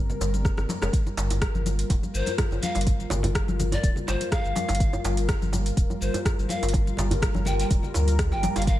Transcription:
Already playing: sub bass G1, analog synth pad G3 C4 A#4
0.10 low conga, shaker
0.21 sub bass G1, djembe slap, djembe tone, shaker
0.34 muted conga, high conga, shaker
0.45 kick, cross-stick, shaker
0.57 sub bass G1, cross-stick, muted conga, djembe tone, shaker
0.69 djembe slap, high conga, shaker
0.82 sub bass F1, cross-stick, muted conga, djembe slap, djembe tone, shaker
0.93 analog synth pad G3 F4 A#4, kick, closed hi-hat, shaker
1.07 muted conga, djembe tone, shaker
1.17 sub bass G1, closed hi-hat, djembe slap, shaker
1.30 closed hi-hat, djembe tone, shaker
1.42 kick, cross-stick, closed hi-hat, muted conga, shaker
1.54 sub bass G1, high conga, shaker
1.66 closed hi-hat, muted conga, high conga, djembe tone, shaker
1.79 closed hi-hat, shaker
1.90 sub bass D1, kick, closed hi-hat, muted conga, djembe tone, shaker
2.03 high conga, shaker
2.14 sub bass G1, pan flute C5, shaker
2.26 closed hi-hat, muted conga, djembe tone, shaker
2.38 kick, cross-stick, closed hi-hat, djembe bass, shaker
2.51 sub bass G1, muted conga, djembe tone, shaker
2.63 pan flute F5, closed hi-hat, high conga, shaker
2.75 sub bass G1, closed hi-hat, djembe slap, muted conga, shaker
2.81 closed hi-hat
2.87 kick, closed hi-hat, djembe tone, shaker
3.00 muted conga, shaker
3.10 sub bass G1, closed hi-hat, djembe slap, djembe tone, low conga, shaker
3.23 closed hi-hat, low conga, djembe bass, shaker
3.35 kick, cross-stick, closed hi-hat, muted conga, shaker
3.48 sub bass G1, djembe tone, high conga, shaker
3.59 closed hi-hat, muted conga, high conga, low conga, shaker
3.72 pan flute D5, closed hi-hat, djembe tone, shaker
3.83 sub bass D1, kick, closed hi-hat, shaker
3.96 low conga, shaker
4.08 sub bass G1, pan flute C5, djembe slap, djembe tone, shaker
4.21 closed hi-hat, muted conga, shaker
4.32 pan flute F5, kick, cross-stick, closed hi-hat, djembe tone, shaker
4.44 sub bass G1, muted conga, shaker
4.56 closed hi-hat, djembe slap, high conga, shaker
4.68 sub bass G1, closed hi-hat, djembe slap, muted conga, djembe tone, shaker
4.75 closed hi-hat
4.80 kick, closed hi-hat, shaker
4.93 muted conga, djembe tone, shaker
5.04 sub bass G1, closed hi-hat, djembe slap, shaker
5.17 closed hi-hat, shaker
5.28 kick, cross-stick, closed hi-hat, muted conga, djembe tone, shaker
5.42 sub bass G1, high conga, shaker
5.53 closed hi-hat, muted conga, djembe tone, high conga, shaker
5.66 closed hi-hat, shaker
5.77 sub bass D1, kick, closed hi-hat, muted conga, shaker
5.90 djembe tone, high conga, shaker
6.01 sub bass G1, pan flute C5, shaker
6.14 closed hi-hat, muted conga, djembe tone, shaker
6.25 kick, cross-stick, closed hi-hat, djembe bass, shaker
6.38 sub bass G1, muted conga, shaker
6.49 pan flute F5, closed hi-hat, high conga, djembe tone, shaker
6.62 sub bass G1, closed hi-hat, muted conga, djembe slap, shaker
6.69 closed hi-hat
6.73 kick, closed hi-hat, djembe tone, shaker
6.87 muted conga, shaker
6.97 sub bass G1, closed hi-hat, djembe slap, low conga, shaker
7.11 closed hi-hat, djembe tone, djembe bass, low conga, shaker
7.22 kick, cross-stick, closed hi-hat, muted conga, shaker
7.34 sub bass G1, high conga, djembe tone, shaker
7.45 pan flute G5, closed hi-hat, muted conga, high conga, low conga, shaker
7.59 pan flute G5, closed hi-hat, shaker
7.70 sub bass D1, kick, closed hi-hat, muted conga, djembe tone, shaker
7.83 low conga, shaker
7.94 sub bass D2, closed hi-hat, djembe slap, djembe tone, shaker
8.07 closed hi-hat, muted conga, shaker
8.19 kick, cross-stick, closed hi-hat, shaker
8.32 sub bass G1, pan flute G5, muted conga, djembe tone, shaker
8.43 closed hi-hat, djembe slap, high conga, shaker
8.56 sub bass G1, pan flute F5, closed hi-hat, djembe slap, muted conga, djembe tone, shaker
8.62 closed hi-hat
8.67 analog synth pad C4, pan flute F5, kick, closed hi-hat, shaker

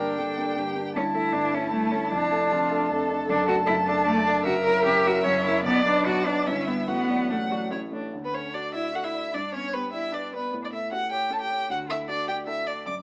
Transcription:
Already playing: grand piano G1 G2 A#3, cello D4, viola A#4, violin G5
0.00 grand piano D4 G4
0.18 grand piano G1 G2, viola A4
0.37 grand piano A#3 D4 G4
0.56 grand piano G1 G2, viola G4
0.76 grand piano A#3 D4 G4
0.95 grand piano G1 G2, cello C#4, viola E4, violin A5
1.14 grand piano A3 E4 A4, cello E4
1.33 grand piano G1 G2, cello D4
1.53 grand piano A3 E4 A4, cello C#4
1.72 grand piano G1 G2, cello A3
1.91 grand piano A3 E4 A4, cello C#4
2.12 grand piano F1 F2, cello D4
2.32 grand piano A3 D4 A4
2.51 grand piano F1 F2, viola F4
2.71 grand piano A3 D4 A4
2.91 grand piano F1 F2, viola A4
3.10 grand piano A3 D4 A4
3.28 grand piano F#1 F#2, cello D4, violin A5
3.47 grand piano A3 D4 A4, cello F#4
3.66 grand piano F#1 F#2, cello E4, viola A4
3.86 grand piano A3 D4 A4, cello D4
4.07 grand piano F#1 F#2, cello A3, viola D5
4.27 grand piano A3 D4 A4, cello D4
4.45 grand piano F#1 F#2, cello F#4, viola A#4, violin E5
4.65 grand piano F#3 E4 A#4, cello A#4
4.86 grand piano F#1 F#2, cello G4
5.06 grand piano F#3 E4 A#4, cello F#4
5.24 grand piano F#1 F#2, cello C#4, viola C#5
5.45 grand piano F#3 E4 A#4, cello E4
5.64 grand piano B1 B2, cello B3, violin D5, viola D5
5.85 grand piano F#3 D4 B4, cello D4
6.05 grand piano B1 B2, viola D4, cello F#4, violin D5
6.25 grand piano F#3 D4 B4, cello D4
6.46 grand piano G1 G2, cello C#4, viola E4, violin E5
6.67 grand piano G3 E4 B4, cello B3
6.88 grand piano A1 A2, cello B3, viola F#4, violin F#5
7.09 grand piano F#3 F#4 D5
7.29 grand piano A1 A2, cello A3, viola D4, violin F#5
7.50 grand piano F#3 F#4 D5, viola F#4
7.71 grand piano A1 A2, viola E4, violin C#5
7.92 grand piano A3 E4 C#5, viola D4
8.13 grand piano D2
8.24 viola B3, cello B3, violin B4
8.33 grand piano A3, viola C#4, cello C#4, violin C#5
8.53 viola D4, cello D4, grand piano F#4, violin D5
8.74 viola E4, cello E4, grand piano D5, violin E5
8.94 cello F#4, viola F#4, grand piano A4, violin F#5
9.04 viola E4, cello E4, violin E5
9.14 grand piano D5
9.34 grand piano G2, viola D4, cello D4, violin D5
9.53 grand piano B3, viola C#4, cello C#4, violin C#5
9.73 viola B3, cello B3, grand piano G4, violin B4
9.93 viola E4, cello E4, grand piano D5, violin E5
10.12 viola D4, cello D4, grand piano B4, violin D5
10.33 viola B3, cello B3, violin B4, grand piano D5
10.53 grand piano A2
10.62 cello D4, violin D5
10.73 grand piano A3, cello E4, violin E5
10.91 viola C#4, cello F#4, grand piano G4, violin F#5
11.11 cello G4, grand piano C#5, violin G5
11.30 viola C#4, grand piano A4, cello A4, violin A5
11.40 cello G4, violin G5
11.50 grand piano C#5
11.69 grand piano D2, cello F#4, violin F#5
11.88 grand piano A3, cello E4, violin E5
12.08 viola D4, cello D4, grand piano F#4, violin D5
12.28 cello G4, grand piano D5, violin G5
12.47 viola D4, cello E4, grand piano A4, violin E5
12.66 cello D4, grand piano D5, violin D5
12.85 grand piano F#2, cello D5, violin D6

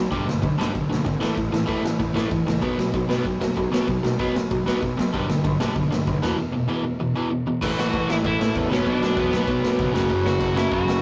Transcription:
Already playing: overdriven electric guitar F#3
0.11 picked electric bass B1, distorted electric guitar G2 D3 G3, kick, open hi-hat
0.27 picked electric bass B1, distorted electric guitar G2 D3, snare
0.43 picked electric bass B1, distorted electric guitar G2 D3, kick, open hi-hat
0.58 picked electric bass B1, distorted electric guitar G2 D3 G3, snare
0.75 picked electric bass B1, distorted electric guitar G2 D3, kick, open hi-hat
0.90 picked electric bass B1, distorted electric guitar G2 D3, snare
1.06 picked electric bass G#1, distorted electric guitar G2 D3, kick, open hi-hat
1.20 picked electric bass A1, distorted electric guitar A2 E3 A3, snare
1.36 picked electric bass A1, distorted electric guitar A2 E3, kick, open hi-hat
1.51 picked electric bass A1, distorted electric guitar A2 E3, snare
1.67 picked electric bass A1, distorted electric guitar A2 E3 A3, kick, open hi-hat
1.82 picked electric bass A1, distorted electric guitar A2 E3, snare
1.98 picked electric bass A1, distorted electric guitar A2 E3, kick, open hi-hat
2.12 picked electric bass A1, distorted electric guitar A2 E3 A3
2.17 snare
2.31 picked electric bass A1, distorted electric guitar A2 E3, kick, open hi-hat
2.45 picked electric bass C#2, distorted electric guitar A2 E3, snare
2.61 picked electric bass B1, distorted electric guitar B2 F#3 B3, kick, open hi-hat
2.76 picked electric bass B1, distorted electric guitar B2 F#3, snare
2.91 picked electric bass B1, distorted electric guitar B2 F#3, kick, open hi-hat
3.07 picked electric bass B1, distorted electric guitar B2 F#3 B3, snare
3.23 picked electric bass B1, distorted electric guitar B2 F#3, kick, open hi-hat
3.40 picked electric bass B1, distorted electric guitar B2 F#3, snare
3.55 picked electric bass B1, distorted electric guitar B2 F#3, kick, open hi-hat
3.71 picked electric bass B1, distorted electric guitar B2 F#3 B3, snare
3.87 picked electric bass B1, distorted electric guitar B2 F#3, kick, open hi-hat
4.03 picked electric bass B1, distorted electric guitar B2 F#3, snare
4.18 picked electric bass B1, distorted electric guitar B2 F#3 B3, kick, open hi-hat
4.33 picked electric bass B1, distorted electric guitar B2 F#3, snare
4.50 picked electric bass B1, distorted electric guitar B2 F#3, kick, open hi-hat
4.66 picked electric bass B1, distorted electric guitar B2 F#3 B3, snare
4.82 picked electric bass B1, distorted electric guitar B2 F#3, kick, open hi-hat
4.97 picked electric bass B1, distorted electric guitar B2 F#3, snare
5.12 picked electric bass B1, distorted electric guitar G2 D3 G3, kick, open hi-hat
5.28 picked electric bass B1, distorted electric guitar G2 D3, snare
5.44 picked electric bass B1, distorted electric guitar G2 D3, kick, open hi-hat
5.59 picked electric bass B1, distorted electric guitar G2 D3 G3, snare
5.75 picked electric bass B1, distorted electric guitar G2 D3, kick, open hi-hat
5.91 picked electric bass B1, distorted electric guitar G2 D3, snare
6.07 picked electric bass B1, distorted electric guitar G2 D3, kick, open hi-hat
6.22 picked electric bass E1, distorted electric guitar E2 B2 E3, snare
6.37 distorted electric guitar E2 B2
6.53 distorted electric guitar E2 B2
6.68 distorted electric guitar E2 B2 E3
6.84 distorted electric guitar E2 B2
6.99 distorted electric guitar E2 B2
7.15 distorted electric guitar E2 B2 E3
7.31 distorted electric guitar E2 B2
7.46 distorted electric guitar E2 B2
7.61 picked electric bass A1, distorted electric guitar A2 E3, kick, crash
7.66 distorted electric guitar A3
7.77 picked electric bass A1, lead electric guitar F#4 F#5, snare
7.94 picked electric bass A1, kick, crash
8.08 distorted electric guitar A2 E3 A3, lead electric guitar E4 E5, snare
8.24 picked electric bass A1, overdriven electric guitar A2 E3 A3, lead electric guitar E4 E5, kick, crash
8.40 picked electric bass A1, snare
8.56 picked electric bass E2, kick, crash
8.69 picked electric bass B1, distorted electric guitar B2 F#3, lead electric guitar C#4 C#5, snare
8.73 distorted electric guitar B3
8.79 kick
8.86 picked electric bass B1, lead electric guitar D4 D5, kick, crash
9.02 picked electric bass B1, snare
9.15 picked electric bass E2, distorted electric guitar B2 F#3 B3, kick, crash
9.20 lead electric guitar B3 B4
9.31 picked electric bass B1, overdriven electric guitar B2 F#3 B3, snare
9.47 picked electric bass B1, kick, crash
9.63 picked electric bass B1, snare
9.79 picked electric bass F#1, kick, crash
9.93 picked electric bass F#1, distorted electric guitar F#2 C#3 F#3, snare
10.02 kick
10.10 picked electric bass F#1, kick, crash
10.25 picked electric bass F#1, lead electric guitar F#4 F#5, snare
10.39 picked electric bass F#1, distorted electric guitar F#2 C#3, kick, crash
10.43 distorted electric guitar F#3
10.55 overdriven electric guitar F#2 C#3 F#3, lead electric guitar E5, snare
10.59 lead electric guitar E4
10.71 picked electric bass F#1, lead electric guitar F#4 F#5, kick, crash
10.87 picked electric bass F#1, snare

